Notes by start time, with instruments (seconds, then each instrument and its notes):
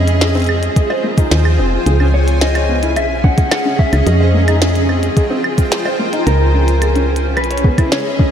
Already playing: fm bass F2, ambient pad F4 G#4 C5 D#5, synth texture G#4, clean electric guitar D#5
0.08 closed hi-hat
0.21 felt piano G#4, snare, closed hi-hat
0.35 felt piano C4, closed hi-hat
0.37 closed hi-hat
0.40 closed hi-hat
0.42 closed hi-hat
0.44 closed hi-hat
0.47 ambient pad G5, closed hi-hat, claves
0.63 ambient pad G#5, closed hi-hat
0.76 kick, closed hi-hat
0.90 felt piano C5, claves
1.04 felt piano A#3
1.18 felt piano D#4, kick, closed hi-hat, cabasa
1.31 fm bass D#2, snare, closed hi-hat
1.45 claves
1.59 fm bass F1, felt piano C4
1.86 fm bass C#2, ambient pad C#4, felt piano G#4, closed hi-hat
2.00 felt piano C#4, claves
2.14 clean electric guitar C#5
2.28 closed hi-hat
2.34 ambient pad G#4 D#5
2.41 clean electric guitar D#5, snare, closed hi-hat
2.55 felt piano C#5, closed hi-hat, claves
2.69 felt piano B3
2.83 felt piano E4, closed hi-hat
2.96 fm bass B1, clean electric guitar E5, closed hi-hat, claves
3.24 felt piano C#4, clean electric guitar F#5, kick
3.38 kick, closed hi-hat
3.51 felt piano G#4, clean electric guitar F#5, snare, closed hi-hat, claves
3.65 felt piano C#4
3.79 clean electric guitar E5, kick
3.93 fm bass C#2, closed hi-hat, claves
4.07 fm bass F2, ambient pad F4, clean electric guitar D#5, closed hi-hat
4.20 felt piano C5
4.34 felt piano A#3
4.43 ambient pad G5
4.48 felt piano D#4, closed hi-hat, claves
4.62 ambient pad C5, snare, closed hi-hat
4.75 closed hi-hat
4.89 felt piano C4, claves
5.03 ambient pad G#5, closed hi-hat
5.17 felt piano G#4, kick, closed hi-hat
5.30 felt piano C4
5.44 claves
5.58 kick, closed hi-hat, cabasa
5.72 snare, closed hi-hat
5.85 felt piano C5, claves
5.99 felt piano A#3
6.13 felt piano D#4, closed hi-hat
6.27 fm bass C#2, ambient pad C#4, clean electric guitar A#4, closed hi-hat
6.54 felt piano C#4
6.68 closed hi-hat
6.82 felt piano G#4, ambient pad G#4, closed hi-hat, claves
6.86 ambient pad E5
6.93 felt piano C#4, ambient pad D#5, closed hi-hat
7.16 closed hi-hat
7.37 fm bass B1, clean electric guitar B4, closed hi-hat, claves
7.44 closed hi-hat
7.51 felt piano C#5, closed hi-hat
7.58 closed hi-hat
7.64 felt piano B3, kick
7.78 felt piano E4, kick, closed hi-hat, claves
7.92 clean electric guitar C#5, snare, closed hi-hat
8.19 felt piano C#4, kick